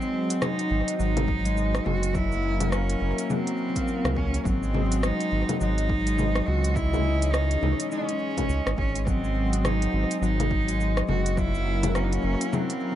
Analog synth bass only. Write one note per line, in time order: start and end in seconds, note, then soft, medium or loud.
0.71 0.83 G#1 loud
1.00 1.80 G#1 loud
1.86 2.96 F#1 loud
3.01 3.13 F#1 loud
4.05 4.40 C#2 loud
4.45 5.12 G#1 loud
5.32 5.44 G#1 medium
5.61 6.42 G#1 loud
6.48 7.57 C#2 medium
7.63 7.75 C#2 medium
8.49 8.61 C#2 loud
8.66 8.75 G#1 medium
8.78 9.88 G#1 medium
9.93 10.06 G#1 loud
10.22 11.03 G#1 loud
11.09 12.19 F#1 loud
12.24 12.36 F#1 loud